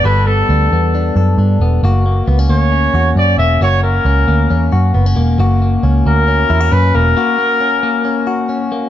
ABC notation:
X:1
M:4/4
L:1/16
Q:1/4=135
K:F#phr
V:1 name="Trumpet"
B2 A8 z6 | z6 c6 d2 e2 | c2 ^A8 z6 | z6 ^A6 B2 A2- |
^A12 z4 |]
V:2 name="Clean electric guitar"
[G,B,DA]2 B,2 D2 B,2 D2 A2 D2 B,2 | [^A,F]2 A,2 B, C A,2 C2 F2 C2 A,2 | [^A,F]2 A,2 C2 A,2 C2 F2 B, C A,2 | [^A,F]2 A,2 C2 A,2 C2 E F C2 A,2 |
[^A,F]2 A,2 C2 A,2 C2 F2 C2 A,2 |]
V:3 name="Picked electric bass" clef=bass
G,,,4 D,,2 E,,4 F,,2 G,,2 E,,,2 | F,,,4 C,,2 D,,4 E,,2 F,,2 E,,,2 | F,,,4 C,,2 D,,2 E,,2 F,,2 F,,,2 E,,,2 | F,,,4 C,,2 D,,4 E,,2 F,,2 E,,,2 |
z16 |]